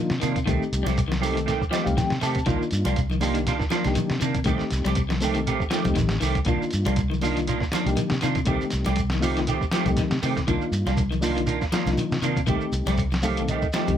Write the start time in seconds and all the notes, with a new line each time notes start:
Already playing: D#3 A#3 D4 D#4 F4
0.10 C3, snare, shekere
0.20 C3 D#3 A#3 D4 F4, closed hi-hat, low conga, shekere
0.36 kick, closed hi-hat, shekere
0.46 C2 D#3 A3 C4 D#4 G4, muted clean electric guitar stroke, kick, closed hi-hat, high conga, shekere
0.63 shekere
0.73 C2, closed hi-hat, shekere
0.83 C2 G3 A3 C4 G4, snare, closed hi-hat, high conga
0.88 shekere
0.98 kick, closed hi-hat, high conga, shekere
1.08 D#3, snare, high conga
1.12 shekere
1.21 D#3 A3 C4 D#4 G4 A4, open hi-hat, low conga, shekere
1.34 D#3, closed hi-hat
1.38 shekere
1.46 D#3 A3 C4 G4, snare, closed hi-hat, high conga, shekere
1.62 kick, shekere
1.70 D#3 F3 A3 C4 G4 D#5, snare, closed hi-hat, high conga, shekere
1.83 C2 A3 C4 D#4 G4 F5, kick, closed hi-hat, low conga, shekere
1.97 D#3 G5, kick, snare, closed hi-hat, high conga, shekere
2.10 C3, snare, shekere
2.21 C3 D#3 A3 C4 G4 A5, muted clean electric guitar stroke, snare, open hi-hat, low conga, shekere
2.35 kick, closed hi-hat, shekere
2.46 C2 D#3 A#3 D4 D#4 F4, kick, closed hi-hat, high conga, shekere
2.61 muted fingered electric bass stroke, shekere
2.71 G2, closed hi-hat, shekere
2.85 C2 G3 A#3 D4 F4, closed hi-hat, high conga, shekere
2.96 kick, closed hi-hat, high conga, shekere
3.10 D#3, high conga, shekere
3.21 D#3 A#3 D4 D#4 F4 G4, open hi-hat, low conga, shekere
3.35 D#3, closed hi-hat, shekere
3.45 D#3 A#3 D4 F4, snare, closed hi-hat, high conga, shekere
3.60 kick, snare, shekere
3.70 D#3 F3 A#3 D4 F4, snare, closed hi-hat, high conga, shekere
3.84 C2 A#3 D4 D#4 G4, snare, closed hi-hat, low conga, shekere
3.95 D#3, closed hi-hat, high conga, shekere
4.10 C3, snare, shekere
4.20 C3 D#3 A#3 D4, closed hi-hat, low conga, shekere
4.35 kick, closed hi-hat, shekere
4.44 C2 D#3 A3 C4 D#4 G4, kick, closed hi-hat, high conga, shekere
4.58 muted fingered electric bass stroke, snare, shekere
4.71 C2, snare, closed hi-hat, shekere
4.85 C2 G3 A3 C4 G4, snare, closed hi-hat, high conga, shekere
4.95 kick, closed hi-hat, high conga, shekere
5.09 D#3, snare, high conga, shekere
5.20 D#3 A3 C4 D#4 G4 A4, open hi-hat, high conga, low conga, shekere
5.34 D#3, closed hi-hat, shekere
5.47 D#3 A3 C4 G4, closed hi-hat, high conga, shekere
5.60 kick, shekere
5.70 D#3 F3 A3 C4 G4, snare, closed hi-hat, high conga, shekere
5.84 C2 A3 C4 D#4 G4, kick, closed hi-hat, high conga, low conga, shekere
5.95 A1 D#3, kick, snare, closed hi-hat, high conga, shekere
6.09 snare, shekere
6.20 C2 D#3 A3 C4 G4, snare, open hi-hat, low conga, shekere
6.35 kick, closed hi-hat, shekere
6.45 C2 D#3 A#3 D4 D#4 F4, kick, closed hi-hat, high conga, shekere
6.62 shekere
6.71 G2, closed hi-hat, shekere
6.85 C2 G3 A#3 D4 F4, closed hi-hat, high conga, shekere
6.96 kick, closed hi-hat, high conga, shekere
7.10 D#3, high conga, shekere
7.21 D#3 A#3 D4 D#4 F4, open hi-hat, low conga, shekere
7.36 D#3, closed hi-hat, shekere
7.47 D#3 A#3 D4 F4, closed hi-hat, high conga, shekere
7.60 kick, snare, shekere
7.72 D#3 F3 A#3 D4 F4, snare, closed hi-hat, high conga, shekere
7.85 C2 A#3 D4 D#4 G4, closed hi-hat, shekere
7.96 D#3, closed hi-hat, high conga, shekere
8.10 C3, snare, shekere
8.21 C3 D#3 A#3 D4 F4, snare, closed hi-hat, low conga, shekere
8.35 kick, closed hi-hat, shekere
8.45 C2 D#3 A3 C4 D#4 G4, kick, closed hi-hat, shekere
8.61 shekere
8.70 C2, snare, closed hi-hat, shekere
8.85 C2 G3 A3 C4 G4, snare, closed hi-hat, high conga, shekere
8.96 kick, closed hi-hat, high conga, shekere
9.10 D#3, snare, high conga, shekere
9.20 D#3 A3 C4 D#4 F4 G4, open hi-hat, high conga, low conga, shekere
9.37 D#3, snare, closed hi-hat, shekere
9.47 D#3 A3 C4 G4, closed hi-hat, high conga, shekere
9.61 kick, shekere
9.71 D#3 F3 A3 C4 G4, snare, closed hi-hat, high conga, shekere
9.86 C2 A3 C4 D#4 G4, kick, closed hi-hat, high conga, shekere
9.97 D#3, kick, snare, closed hi-hat, high conga, shekere
10.11 C3, snare, shekere
10.22 C3 D#3 A3 C4 G4, open hi-hat, low conga, shekere
10.37 kick, snare, closed hi-hat, shekere
10.47 C2 D#3 A#3 D4 D#4 F4, kick, closed hi-hat, high conga, shekere
10.62 muted fingered electric bass stroke, shekere
10.72 G2, closed hi-hat, shekere
10.86 C2 G3 A#3 D4 F4, snare, closed hi-hat, high conga, shekere
10.97 kick, closed hi-hat, high conga, shekere
11.11 D#3, high conga, shekere
11.21 D#3 A#3 D4 D#4 F4, open hi-hat, low conga, shekere
11.36 D#3, closed hi-hat, shekere
11.46 D#3 A#3 D4 F4, closed hi-hat, high conga, shekere
11.61 kick, snare, shekere
11.72 D#3 F3 A#3 D4 F4, snare, closed hi-hat, high conga, shekere
11.86 C2 A#3 D4 D#4 F4, snare, closed hi-hat, high conga, low conga, shekere
11.98 D#3, closed hi-hat, high conga, shekere
12.12 C3, snare, shekere
12.22 C3 D#3 A#3 D4 F4, closed hi-hat, low conga, shekere
12.36 kick, closed hi-hat, shekere
12.47 C2 D#3 A3 C4 D#4 G4, kick, closed hi-hat, high conga, shekere
12.61 shekere
12.72 C2, closed hi-hat, shekere
12.86 C2 G3 A3 C4 G4, snare, closed hi-hat, high conga, shekere
12.97 kick, closed hi-hat, high conga, shekere
13.12 muted clean electric guitar stroke, snare, high conga, shekere
13.22 D#3 A3 C4 D#4 G4 A4 F5, open hi-hat, high conga, low conga, shekere
13.37 D#3, closed hi-hat, shekere
13.48 D#3 A3 C4 G4 D#5, closed hi-hat, high conga, shekere
13.62 kick, shekere
13.73 D#3 F3 A3 C4 G4, snare, closed hi-hat, high conga, shekere
13.86 C2 A3 C4 D#4 G4, kick, closed hi-hat, high conga, low conga, shekere